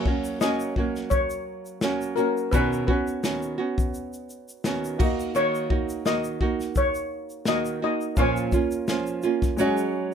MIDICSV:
0, 0, Header, 1, 5, 480
1, 0, Start_track
1, 0, Key_signature, 6, "major"
1, 0, Tempo, 705882
1, 1718, Time_signature, 4, 2, 24, 8
1, 6895, End_track
2, 0, Start_track
2, 0, Title_t, "Steel pan"
2, 0, Program_c, 0, 114
2, 0, Note_on_c, 0, 73, 105
2, 249, Note_off_c, 0, 73, 0
2, 280, Note_on_c, 0, 75, 99
2, 732, Note_off_c, 0, 75, 0
2, 750, Note_on_c, 0, 73, 90
2, 1446, Note_off_c, 0, 73, 0
2, 1467, Note_on_c, 0, 70, 80
2, 1710, Note_on_c, 0, 71, 101
2, 1719, Note_off_c, 0, 70, 0
2, 1945, Note_off_c, 0, 71, 0
2, 1953, Note_on_c, 0, 71, 75
2, 2648, Note_off_c, 0, 71, 0
2, 3644, Note_on_c, 0, 73, 105
2, 4093, Note_off_c, 0, 73, 0
2, 4124, Note_on_c, 0, 75, 100
2, 4607, Note_on_c, 0, 73, 94
2, 4614, Note_off_c, 0, 75, 0
2, 5088, Note_on_c, 0, 75, 106
2, 5096, Note_off_c, 0, 73, 0
2, 5306, Note_off_c, 0, 75, 0
2, 5331, Note_on_c, 0, 75, 96
2, 5571, Note_off_c, 0, 75, 0
2, 5572, Note_on_c, 0, 73, 97
2, 6895, Note_off_c, 0, 73, 0
2, 6895, End_track
3, 0, Start_track
3, 0, Title_t, "Felt piano"
3, 0, Program_c, 1, 0
3, 0, Control_c, 1, 64, 127
3, 0, Note_on_c, 1, 58, 61
3, 0, Note_on_c, 1, 61, 49
3, 0, Note_on_c, 1, 66, 55
3, 0, Note_on_c, 1, 73, 63
3, 1689, Note_off_c, 1, 61, 0
3, 1694, Note_off_c, 1, 66, 0
3, 1698, Note_off_c, 1, 73, 0
3, 1707, Note_off_c, 1, 58, 0
3, 1710, Note_on_c, 1, 59, 59
3, 1717, Note_on_c, 1, 63, 51
3, 1725, Control_c, 1, 64, 0
3, 1727, Note_on_c, 1, 66, 54
3, 1734, Note_on_c, 1, 73, 72
3, 1858, Control_c, 1, 64, 127
3, 3366, Note_off_c, 1, 59, 0
3, 3369, Note_off_c, 1, 63, 0
3, 3375, Note_off_c, 1, 66, 0
3, 3378, Note_off_c, 1, 73, 0
3, 3386, Note_on_c, 1, 58, 74
3, 3397, Note_on_c, 1, 63, 67
3, 3404, Note_on_c, 1, 66, 65
3, 3405, Control_c, 1, 64, 0
3, 3412, Note_on_c, 1, 75, 81
3, 3534, Control_c, 1, 64, 127
3, 5284, Note_off_c, 1, 58, 0
3, 5289, Note_off_c, 1, 63, 0
3, 5293, Note_off_c, 1, 66, 0
3, 5297, Note_off_c, 1, 75, 0
3, 5543, Note_on_c, 1, 58, 64
3, 5553, Note_on_c, 1, 61, 49
3, 5560, Note_on_c, 1, 65, 57
3, 5566, Control_c, 1, 64, 0
3, 5571, Note_on_c, 1, 73, 66
3, 5698, Control_c, 1, 64, 127
3, 6491, Note_off_c, 1, 58, 0
3, 6496, Note_off_c, 1, 61, 0
3, 6500, Note_off_c, 1, 65, 0
3, 6505, Note_off_c, 1, 73, 0
3, 6505, Note_on_c, 1, 56, 75
3, 6514, Note_on_c, 1, 61, 72
3, 6523, Note_on_c, 1, 66, 68
3, 6525, Control_c, 1, 64, 0
3, 6532, Note_on_c, 1, 73, 85
3, 6643, Control_c, 1, 64, 127
3, 6895, Note_off_c, 1, 56, 0
3, 6895, Note_off_c, 1, 61, 0
3, 6895, Note_off_c, 1, 66, 0
3, 6895, Note_off_c, 1, 73, 0
3, 6895, End_track
4, 0, Start_track
4, 0, Title_t, "Nylon-string guitar"
4, 0, Program_c, 2, 24
4, 46, Note_on_c, 2, 66, 54
4, 51, Note_on_c, 2, 61, 54
4, 55, Note_on_c, 2, 58, 45
4, 60, Note_on_c, 2, 54, 44
4, 269, Note_off_c, 2, 54, 0
4, 273, Note_off_c, 2, 58, 0
4, 277, Note_on_c, 2, 54, 52
4, 278, Note_off_c, 2, 61, 0
4, 281, Note_on_c, 2, 58, 57
4, 282, Note_off_c, 2, 66, 0
4, 286, Note_on_c, 2, 61, 65
4, 290, Note_on_c, 2, 66, 63
4, 516, Note_off_c, 2, 66, 0
4, 517, Note_off_c, 2, 54, 0
4, 520, Note_off_c, 2, 58, 0
4, 520, Note_off_c, 2, 61, 0
4, 525, Note_on_c, 2, 66, 52
4, 528, Note_on_c, 2, 61, 56
4, 535, Note_on_c, 2, 58, 50
4, 540, Note_on_c, 2, 54, 48
4, 1232, Note_off_c, 2, 58, 0
4, 1234, Note_off_c, 2, 54, 0
4, 1236, Note_on_c, 2, 54, 61
4, 1240, Note_on_c, 2, 58, 58
4, 1243, Note_off_c, 2, 61, 0
4, 1246, Note_on_c, 2, 61, 70
4, 1247, Note_off_c, 2, 66, 0
4, 1250, Note_on_c, 2, 66, 63
4, 1467, Note_off_c, 2, 66, 0
4, 1472, Note_off_c, 2, 61, 0
4, 1475, Note_on_c, 2, 66, 52
4, 1477, Note_off_c, 2, 54, 0
4, 1479, Note_off_c, 2, 58, 0
4, 1480, Note_on_c, 2, 61, 47
4, 1487, Note_on_c, 2, 58, 48
4, 1490, Note_on_c, 2, 54, 39
4, 1716, Note_off_c, 2, 66, 0
4, 1717, Note_on_c, 2, 47, 76
4, 1718, Note_off_c, 2, 54, 0
4, 1719, Note_off_c, 2, 61, 0
4, 1720, Note_on_c, 2, 51, 78
4, 1722, Note_off_c, 2, 58, 0
4, 1725, Note_on_c, 2, 59, 79
4, 1726, Note_on_c, 2, 66, 83
4, 1728, Note_on_c, 2, 61, 84
4, 1951, Note_off_c, 2, 66, 0
4, 1957, Note_off_c, 2, 47, 0
4, 1959, Note_off_c, 2, 51, 0
4, 1959, Note_off_c, 2, 61, 0
4, 1959, Note_on_c, 2, 66, 61
4, 1961, Note_off_c, 2, 59, 0
4, 1967, Note_on_c, 2, 61, 54
4, 1972, Note_on_c, 2, 59, 51
4, 2192, Note_off_c, 2, 59, 0
4, 2197, Note_off_c, 2, 61, 0
4, 2197, Note_on_c, 2, 51, 51
4, 2198, Note_off_c, 2, 66, 0
4, 2200, Note_on_c, 2, 59, 61
4, 2205, Note_on_c, 2, 61, 64
4, 2209, Note_on_c, 2, 66, 62
4, 2425, Note_off_c, 2, 66, 0
4, 2433, Note_on_c, 2, 66, 61
4, 2435, Note_off_c, 2, 61, 0
4, 2437, Note_off_c, 2, 51, 0
4, 2439, Note_off_c, 2, 59, 0
4, 2444, Note_on_c, 2, 61, 56
4, 2447, Note_on_c, 2, 59, 48
4, 3156, Note_off_c, 2, 59, 0
4, 3160, Note_off_c, 2, 61, 0
4, 3160, Note_on_c, 2, 51, 60
4, 3164, Note_on_c, 2, 59, 67
4, 3168, Note_on_c, 2, 61, 69
4, 3170, Note_off_c, 2, 66, 0
4, 3173, Note_on_c, 2, 66, 81
4, 3386, Note_off_c, 2, 66, 0
4, 3394, Note_on_c, 2, 66, 70
4, 3398, Note_off_c, 2, 51, 0
4, 3400, Note_off_c, 2, 59, 0
4, 3401, Note_off_c, 2, 61, 0
4, 3404, Note_on_c, 2, 63, 52
4, 3409, Note_on_c, 2, 58, 51
4, 3634, Note_off_c, 2, 58, 0
4, 3635, Note_off_c, 2, 66, 0
4, 3636, Note_off_c, 2, 63, 0
4, 3636, Note_on_c, 2, 51, 86
4, 3642, Note_on_c, 2, 58, 88
4, 3644, Note_on_c, 2, 63, 88
4, 3644, Note_on_c, 2, 66, 88
4, 3868, Note_off_c, 2, 66, 0
4, 3874, Note_off_c, 2, 63, 0
4, 3876, Note_off_c, 2, 51, 0
4, 3876, Note_on_c, 2, 66, 49
4, 3879, Note_off_c, 2, 58, 0
4, 3882, Note_on_c, 2, 63, 50
4, 3889, Note_on_c, 2, 58, 50
4, 4110, Note_off_c, 2, 58, 0
4, 4115, Note_on_c, 2, 51, 48
4, 4116, Note_off_c, 2, 63, 0
4, 4117, Note_off_c, 2, 66, 0
4, 4118, Note_on_c, 2, 58, 59
4, 4124, Note_on_c, 2, 63, 63
4, 4127, Note_on_c, 2, 66, 65
4, 4350, Note_off_c, 2, 66, 0
4, 4356, Note_off_c, 2, 51, 0
4, 4358, Note_off_c, 2, 58, 0
4, 4358, Note_off_c, 2, 63, 0
4, 4358, Note_on_c, 2, 66, 58
4, 4366, Note_on_c, 2, 63, 54
4, 4372, Note_on_c, 2, 58, 49
4, 5075, Note_on_c, 2, 51, 59
4, 5077, Note_off_c, 2, 66, 0
4, 5078, Note_off_c, 2, 58, 0
4, 5079, Note_off_c, 2, 63, 0
4, 5081, Note_on_c, 2, 58, 64
4, 5087, Note_on_c, 2, 63, 62
4, 5091, Note_on_c, 2, 66, 66
4, 5311, Note_off_c, 2, 66, 0
4, 5316, Note_off_c, 2, 51, 0
4, 5319, Note_off_c, 2, 58, 0
4, 5319, Note_off_c, 2, 63, 0
4, 5319, Note_on_c, 2, 66, 56
4, 5328, Note_on_c, 2, 63, 51
4, 5334, Note_on_c, 2, 58, 51
4, 5556, Note_off_c, 2, 58, 0
4, 5556, Note_on_c, 2, 46, 73
4, 5558, Note_off_c, 2, 66, 0
4, 5559, Note_on_c, 2, 53, 89
4, 5562, Note_off_c, 2, 63, 0
4, 5564, Note_on_c, 2, 58, 86
4, 5566, Note_on_c, 2, 61, 84
4, 5569, Note_on_c, 2, 65, 89
4, 5794, Note_off_c, 2, 65, 0
4, 5796, Note_off_c, 2, 46, 0
4, 5798, Note_off_c, 2, 53, 0
4, 5800, Note_off_c, 2, 58, 0
4, 5802, Note_off_c, 2, 61, 0
4, 5802, Note_on_c, 2, 65, 56
4, 5809, Note_on_c, 2, 61, 52
4, 5815, Note_on_c, 2, 58, 46
4, 6035, Note_off_c, 2, 58, 0
4, 6038, Note_off_c, 2, 61, 0
4, 6038, Note_on_c, 2, 53, 58
4, 6039, Note_off_c, 2, 65, 0
4, 6043, Note_on_c, 2, 58, 56
4, 6046, Note_on_c, 2, 61, 64
4, 6051, Note_on_c, 2, 65, 61
4, 6271, Note_off_c, 2, 65, 0
4, 6278, Note_off_c, 2, 53, 0
4, 6279, Note_off_c, 2, 61, 0
4, 6279, Note_on_c, 2, 65, 58
4, 6280, Note_off_c, 2, 58, 0
4, 6287, Note_on_c, 2, 61, 52
4, 6293, Note_on_c, 2, 58, 57
4, 6516, Note_off_c, 2, 61, 0
4, 6518, Note_off_c, 2, 65, 0
4, 6518, Note_on_c, 2, 54, 78
4, 6522, Note_off_c, 2, 58, 0
4, 6524, Note_on_c, 2, 61, 84
4, 6525, Note_on_c, 2, 56, 93
4, 6528, Note_on_c, 2, 66, 102
4, 6895, Note_off_c, 2, 54, 0
4, 6895, Note_off_c, 2, 56, 0
4, 6895, Note_off_c, 2, 61, 0
4, 6895, Note_off_c, 2, 66, 0
4, 6895, End_track
5, 0, Start_track
5, 0, Title_t, "Drums"
5, 38, Note_on_c, 9, 36, 101
5, 106, Note_off_c, 9, 36, 0
5, 167, Note_on_c, 9, 82, 57
5, 235, Note_off_c, 9, 82, 0
5, 279, Note_on_c, 9, 38, 117
5, 280, Note_on_c, 9, 82, 70
5, 347, Note_off_c, 9, 38, 0
5, 348, Note_off_c, 9, 82, 0
5, 407, Note_on_c, 9, 82, 57
5, 475, Note_off_c, 9, 82, 0
5, 518, Note_on_c, 9, 36, 83
5, 586, Note_off_c, 9, 36, 0
5, 649, Note_on_c, 9, 38, 38
5, 653, Note_on_c, 9, 82, 45
5, 717, Note_off_c, 9, 38, 0
5, 721, Note_off_c, 9, 82, 0
5, 754, Note_on_c, 9, 82, 78
5, 757, Note_on_c, 9, 36, 95
5, 822, Note_off_c, 9, 82, 0
5, 825, Note_off_c, 9, 36, 0
5, 885, Note_on_c, 9, 82, 55
5, 953, Note_off_c, 9, 82, 0
5, 1127, Note_on_c, 9, 82, 50
5, 1195, Note_off_c, 9, 82, 0
5, 1233, Note_on_c, 9, 38, 112
5, 1237, Note_on_c, 9, 82, 60
5, 1301, Note_off_c, 9, 38, 0
5, 1305, Note_off_c, 9, 82, 0
5, 1369, Note_on_c, 9, 82, 56
5, 1437, Note_off_c, 9, 82, 0
5, 1476, Note_on_c, 9, 82, 42
5, 1544, Note_off_c, 9, 82, 0
5, 1613, Note_on_c, 9, 82, 46
5, 1681, Note_off_c, 9, 82, 0
5, 1718, Note_on_c, 9, 82, 72
5, 1719, Note_on_c, 9, 36, 109
5, 1786, Note_off_c, 9, 82, 0
5, 1787, Note_off_c, 9, 36, 0
5, 1856, Note_on_c, 9, 82, 56
5, 1924, Note_off_c, 9, 82, 0
5, 1958, Note_on_c, 9, 36, 95
5, 2026, Note_off_c, 9, 36, 0
5, 2090, Note_on_c, 9, 82, 58
5, 2158, Note_off_c, 9, 82, 0
5, 2201, Note_on_c, 9, 38, 120
5, 2202, Note_on_c, 9, 82, 72
5, 2269, Note_off_c, 9, 38, 0
5, 2270, Note_off_c, 9, 82, 0
5, 2328, Note_on_c, 9, 82, 56
5, 2396, Note_off_c, 9, 82, 0
5, 2569, Note_on_c, 9, 36, 100
5, 2575, Note_on_c, 9, 82, 51
5, 2637, Note_off_c, 9, 36, 0
5, 2643, Note_off_c, 9, 82, 0
5, 2680, Note_on_c, 9, 82, 70
5, 2748, Note_off_c, 9, 82, 0
5, 2811, Note_on_c, 9, 82, 54
5, 2879, Note_off_c, 9, 82, 0
5, 2922, Note_on_c, 9, 82, 48
5, 2990, Note_off_c, 9, 82, 0
5, 3052, Note_on_c, 9, 82, 51
5, 3120, Note_off_c, 9, 82, 0
5, 3157, Note_on_c, 9, 38, 127
5, 3161, Note_on_c, 9, 82, 57
5, 3225, Note_off_c, 9, 38, 0
5, 3229, Note_off_c, 9, 82, 0
5, 3294, Note_on_c, 9, 82, 59
5, 3362, Note_off_c, 9, 82, 0
5, 3399, Note_on_c, 9, 36, 116
5, 3400, Note_on_c, 9, 49, 70
5, 3467, Note_off_c, 9, 36, 0
5, 3468, Note_off_c, 9, 49, 0
5, 3534, Note_on_c, 9, 82, 50
5, 3602, Note_off_c, 9, 82, 0
5, 3640, Note_on_c, 9, 82, 78
5, 3708, Note_off_c, 9, 82, 0
5, 3773, Note_on_c, 9, 82, 55
5, 3841, Note_off_c, 9, 82, 0
5, 3878, Note_on_c, 9, 36, 98
5, 3946, Note_off_c, 9, 36, 0
5, 4007, Note_on_c, 9, 82, 61
5, 4075, Note_off_c, 9, 82, 0
5, 4119, Note_on_c, 9, 38, 127
5, 4120, Note_on_c, 9, 82, 72
5, 4187, Note_off_c, 9, 38, 0
5, 4188, Note_off_c, 9, 82, 0
5, 4244, Note_on_c, 9, 82, 58
5, 4312, Note_off_c, 9, 82, 0
5, 4356, Note_on_c, 9, 36, 87
5, 4424, Note_off_c, 9, 36, 0
5, 4487, Note_on_c, 9, 38, 37
5, 4491, Note_on_c, 9, 82, 51
5, 4555, Note_off_c, 9, 38, 0
5, 4559, Note_off_c, 9, 82, 0
5, 4592, Note_on_c, 9, 82, 73
5, 4595, Note_on_c, 9, 36, 97
5, 4660, Note_off_c, 9, 82, 0
5, 4663, Note_off_c, 9, 36, 0
5, 4724, Note_on_c, 9, 82, 56
5, 4792, Note_off_c, 9, 82, 0
5, 4963, Note_on_c, 9, 82, 45
5, 5031, Note_off_c, 9, 82, 0
5, 5069, Note_on_c, 9, 38, 123
5, 5073, Note_on_c, 9, 82, 56
5, 5137, Note_off_c, 9, 38, 0
5, 5141, Note_off_c, 9, 82, 0
5, 5206, Note_on_c, 9, 82, 62
5, 5274, Note_off_c, 9, 82, 0
5, 5447, Note_on_c, 9, 82, 47
5, 5515, Note_off_c, 9, 82, 0
5, 5552, Note_on_c, 9, 82, 74
5, 5555, Note_on_c, 9, 36, 117
5, 5620, Note_off_c, 9, 82, 0
5, 5623, Note_off_c, 9, 36, 0
5, 5689, Note_on_c, 9, 82, 51
5, 5757, Note_off_c, 9, 82, 0
5, 5795, Note_on_c, 9, 36, 96
5, 5796, Note_on_c, 9, 82, 53
5, 5863, Note_off_c, 9, 36, 0
5, 5864, Note_off_c, 9, 82, 0
5, 5925, Note_on_c, 9, 82, 58
5, 5993, Note_off_c, 9, 82, 0
5, 6038, Note_on_c, 9, 38, 108
5, 6039, Note_on_c, 9, 82, 76
5, 6106, Note_off_c, 9, 38, 0
5, 6107, Note_off_c, 9, 82, 0
5, 6164, Note_on_c, 9, 82, 56
5, 6232, Note_off_c, 9, 82, 0
5, 6273, Note_on_c, 9, 82, 49
5, 6341, Note_off_c, 9, 82, 0
5, 6406, Note_on_c, 9, 38, 35
5, 6407, Note_on_c, 9, 36, 93
5, 6411, Note_on_c, 9, 82, 50
5, 6474, Note_off_c, 9, 38, 0
5, 6475, Note_off_c, 9, 36, 0
5, 6479, Note_off_c, 9, 82, 0
5, 6515, Note_on_c, 9, 82, 74
5, 6583, Note_off_c, 9, 82, 0
5, 6647, Note_on_c, 9, 82, 52
5, 6715, Note_off_c, 9, 82, 0
5, 6895, End_track
0, 0, End_of_file